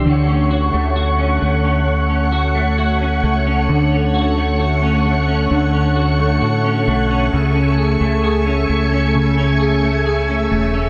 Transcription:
<<
  \new Staff \with { instrumentName = "String machine" } { \time 4/4 \key d \lydian \tempo 4 = 66 << { <a cis'''>1~ | <a cis'''>1~ | <a cis'''>1 | } \\ { <cis'' fis''>1~ | <cis'' fis''>1 | <e'' gis''>1 | } >> }
  \new Staff \with { instrumentName = "Clean electric guitar" } { \time 4/4 \key d \lydian d16 cis'16 fis'16 a16 fis'16 cis'16 a16 cis'8 cis'16 fis'16 a16 fis'16 cis'16 a16 cis'16 | d16 cis'16 fis'16 a16 fis'16 cis'16 a16 cis'16 d16 cis'16 fis'16 a16 fis'16 cis'16 a16 cis'16 | cis16 cis'16 gis'16 a16 gis'16 cis'16 a16 cis'16 cis16 cis'16 gis'16 a16 gis'16 cis'16 a16 cis'16 | }
  \new Staff \with { instrumentName = "Fingered electric bass" } { \clef bass \time 4/4 \key d \lydian d,8. d,8. d,2 cis,8 | d,2 d,4 a,8 b,,8 | cis,8. cis,8. cis,2 e,,8 | }
>>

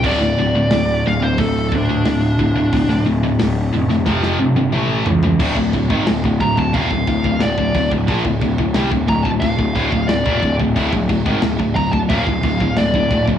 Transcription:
<<
  \new Staff \with { instrumentName = "Lead electric guitar" } { \time 4/4 \key d \minor \tempo 4 = 90 d''4. f''16 c''16 a'8 d'4.~ | d'8 r2. r8 | r4. bes''16 a''16 f''4 d''8. r16 | r4. bes''16 a''16 f''4 d''8. r16 |
r4. bes''16 a''16 f''4 d''8. r16 | }
  \new Staff \with { instrumentName = "Distorted electric guitar" } { \clef bass \time 4/4 \key d \minor <d, a, d>16 <d, a,>16 <d, a,>16 <d, a,>16 <d, a,>8 <d, a,>16 <d, a,>16 <d, a,>8 <d, a,>16 <d, a,>16 <d, a,>8 <d, a,>16 <d, a,>16 | <d, a,>16 <d, a,>16 <d, a,>16 <d, a,>16 <d, a,>8 <d, a,>16 <d, a,>16 <f, c f>8 <f, c>16 <f, c>16 <a, e a>8 <a, e>16 <a, e>16 | <d, a,>16 <d, a,>16 <d, a,>16 <gis, ees>16 <d, a,>16 <d, a,>16 <d, a,>16 <d, a,>16 <ees, bes,>16 <d, a,>16 <d, a,>16 <d, a,>16 <d, a,>16 <d, a,>16 <d, a,>16 <d, a,>16 | <bes, f>16 <d, a,>16 <d, a,>16 <d, a,>16 <c g>16 <d, a,>16 <d, a,>16 <d, a,>16 <d, a,>16 <d, a,>16 <d, a,>16 <d, a,>16 <d, a,>16 <ees, bes,>16 <d, a,>16 <d, a,>16 |
<d, a,>16 <d, a,>16 <d, a,>16 <gis, ees>16 <d, a,>16 <d, a,>16 <d, a,>16 <d, a,>16 <ees, bes,>16 <d, a,>16 <d, a,>16 <d, a,>16 <d, a,>16 <d, a,>16 <d, a,>16 <d, a,>16 | }
  \new Staff \with { instrumentName = "Picked electric bass" } { \clef bass \time 4/4 \key d \minor d,,8 d,,8 d,,8 d,,8 d,,8 d,8 d,,8 d,,8 | d,,8 d,,8 d,,8 f,,8 f,,8 g,,8 a,,8 cis,8 | d,,16 d,,16 d,,16 gis,,16 d,,16 d,,16 d,,16 d,,16 ees,,16 d,,16 d,,16 d,,16 d,,16 d,,16 d,,16 d,,16 | bes,,16 d,,16 d,,16 d,,16 c,16 d,,16 d,,16 d,,16 d,,16 d,,16 d,,16 d,,16 d,,16 ees,,16 d,,16 d,,16 |
d,,16 d,,16 d,,16 gis,,16 d,,16 d,,16 d,,16 d,,16 ees,,16 d,,16 d,,16 d,,16 d,,16 d,,16 d,,16 d,,16 | }
  \new DrumStaff \with { instrumentName = "Drums" } \drummode { \time 4/4 <cymc bd>16 sn8. <hho sn>4 <hho bd>8 bd8 <hho sn>8 bd8 | <hho bd>16 sn8. <hho sn>8. sn16 <bd sn>16 sn8 tommh16 toml8 tomfh16 tomfh16 | <cymc bd>16 bd16 <cymc bd>16 bd16 <cymc sn>16 bd16 <cymc bd>16 bd16 <cymc bd>16 bd16 <cymc bd>16 bd16 <cymc sn>16 bd16 <cymc bd>16 bd16 | <cymc bd>16 bd16 <cymc bd>16 bd16 <cymc sn>16 bd16 <cymc bd>16 bd16 <cymc bd>16 bd16 <cymc bd>16 bd16 <cymc sn>16 bd16 <cymc bd>16 bd16 |
<cymc bd>16 bd16 <cymc bd>16 bd16 <cymc sn>16 bd16 <cymc bd>16 bd16 <cymc bd>16 bd16 <cymc bd>16 bd16 <cymc sn>16 bd16 <cymc bd>16 bd16 | }
>>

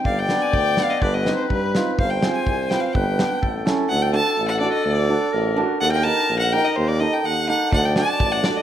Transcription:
<<
  \new Staff \with { instrumentName = "Violin" } { \time 2/4 \tempo 4 = 125 f''16 g''8 aes''16 g''8 f''16 ees''16 | d''16 ees''8 c''16 b'8. r16 | f''16 g''8 aes''8. g''16 f''16 | g''4. r8 |
fis''16 g''16 a''8. fis''16 d''16 ees''16 | d''4. r8 | fis''16 g''16 a''8. fis''16 g''16 ees''16 | c''16 d''16 ees''16 g''16 fis''8 fis''8 |
fis''16 g''16 a''8. fis''16 d''16 ees''16 | }
  \new Staff \with { instrumentName = "Clarinet" } { \time 2/4 d''2 | b'2 | c''2 | b'4 a'4 |
a'2~ | a'4 bes'4 | bes'2~ | bes'4. r8 |
d''2 | }
  \new Staff \with { instrumentName = "Hammered dulcimer" } { \time 2/4 r8 <b d' g'>16 r8. <b d' g'>16 r16 | r8 <c' ees' g'>16 r8. <c' ees' f'>16 r16 | r8 <c' f' aes'>16 r8. <c' f' b'>16 r16 | r8 <b d' g'>16 r8. <cis' e' a'>16 r16 |
r8 <d' fis' a'>16 r8. <d' fis' a'>16 r16 | r8 <d' fis' a'>16 r8. <d' fis' a'>16 r16 | r8 <ees' g' bes'>16 r8. <ees' g' bes'>16 r16 | r8 <ees' g' a'>16 r8. <ees' g' a'>16 r16 |
r8 <d' fis' a'>16 r8. <d' fis' a'>16 r16 | }
  \new Staff \with { instrumentName = "Tuba" } { \clef bass \time 2/4 g,,4 d,4 | g,,4 g,4 | g,,4 c,4 | g,,4 a,,4 |
d,4 a,,4 | d,4 a,,4 | ees,4 bes,,4 | ees,4 ees,4 |
d,4 a,,4 | }
  \new DrumStaff \with { instrumentName = "Drums" } \drummode { \time 2/4 bd8 sn8 bd8 sn8 | bd8 sn8 bd8 sn8 | bd8 sn8 bd8 sn8 | bd8 sn8 bd8 sn8 |
r4 r4 | r4 r4 | r4 r4 | r4 r4 |
bd16 sn16 sn8 bd8 sn8 | }
>>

